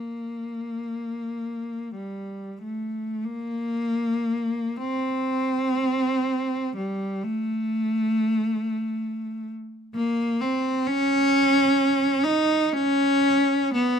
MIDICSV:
0, 0, Header, 1, 2, 480
1, 0, Start_track
1, 0, Tempo, 500000
1, 13435, End_track
2, 0, Start_track
2, 0, Title_t, "Cello"
2, 0, Program_c, 0, 42
2, 0, Note_on_c, 0, 58, 34
2, 1870, Note_on_c, 0, 55, 36
2, 1872, Note_off_c, 0, 58, 0
2, 2476, Note_off_c, 0, 55, 0
2, 2521, Note_on_c, 0, 57, 39
2, 3120, Note_on_c, 0, 58, 63
2, 3130, Note_off_c, 0, 57, 0
2, 4578, Note_on_c, 0, 60, 71
2, 4580, Note_off_c, 0, 58, 0
2, 6477, Note_off_c, 0, 60, 0
2, 6490, Note_on_c, 0, 55, 62
2, 6931, Note_off_c, 0, 55, 0
2, 6946, Note_on_c, 0, 57, 69
2, 9129, Note_off_c, 0, 57, 0
2, 9553, Note_on_c, 0, 58, 80
2, 9962, Note_off_c, 0, 58, 0
2, 9990, Note_on_c, 0, 60, 74
2, 10433, Note_on_c, 0, 61, 96
2, 10435, Note_off_c, 0, 60, 0
2, 11748, Note_on_c, 0, 63, 90
2, 11753, Note_off_c, 0, 61, 0
2, 12213, Note_off_c, 0, 63, 0
2, 12217, Note_on_c, 0, 61, 94
2, 13192, Note_on_c, 0, 59, 78
2, 13195, Note_off_c, 0, 61, 0
2, 13435, Note_off_c, 0, 59, 0
2, 13435, End_track
0, 0, End_of_file